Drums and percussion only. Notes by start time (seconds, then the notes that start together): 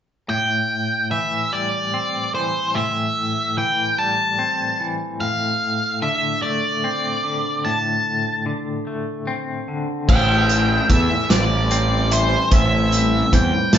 10.09 kick, crash
10.49 closed hi-hat
10.90 kick, closed hi-hat
11.30 snare, closed hi-hat
11.71 closed hi-hat
12.11 closed hi-hat
12.52 kick, closed hi-hat
12.92 closed hi-hat
13.33 kick, closed hi-hat
13.73 snare, closed hi-hat